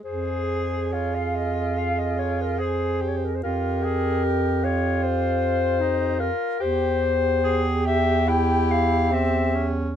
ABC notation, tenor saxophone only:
X:1
M:4/4
L:1/8
Q:1/4=72
K:Fm
V:1 name="Tenor saxophone"
A2 F4 A G | F A G F3 E F | G z A G =E2 C D |]